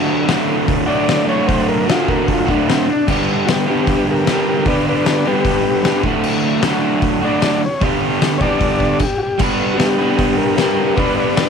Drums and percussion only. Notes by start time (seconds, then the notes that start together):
0.28 snare, open hi-hat
0.68 kick, open hi-hat
1.08 snare, open hi-hat
1.49 kick, open hi-hat
1.89 snare, open hi-hat
2.08 kick
2.28 kick, open hi-hat
2.48 kick
2.69 snare, open hi-hat
3.08 kick, crash
3.48 snare, open hi-hat
3.87 kick, open hi-hat
4.27 snare, open hi-hat
4.65 kick, open hi-hat
5.06 snare, open hi-hat
5.45 kick, open hi-hat
5.84 snare, open hi-hat
6.03 kick
6.24 crash
6.62 snare, open hi-hat
7.02 kick, open hi-hat
7.42 snare, open hi-hat
7.81 kick, open hi-hat
8.21 snare, open hi-hat
8.41 kick
8.60 kick, open hi-hat
8.80 kick
8.99 kick, crash
9.39 kick, crash
9.79 snare, open hi-hat
10.18 kick, open hi-hat
10.58 snare, open hi-hat
10.97 kick, open hi-hat
11.37 snare, open hi-hat